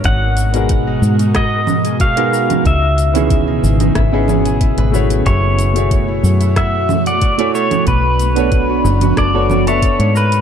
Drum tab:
HH |x-xxx--xx--xxx-x|x-xxx--xx--xxx-x|x-xxx--xx--xxx-x|x-xxx--xx--xxx-x|
SH |x-xxx-xxx-xxx-xx|x-xxx-xxx-xxx-xx|x-xxx-xxx-xxx-xx|x-xxx-xxx-xxx-xx|
SD |--------r-------|--------r-------|--------r-------|--------r-------|
CG |----------O----O|-------O--O-----|----------O----O|-------O--O-----|
BD |o---o---o---o---|o---o---o---o---|o---o---o---o---|o---o---o---o---|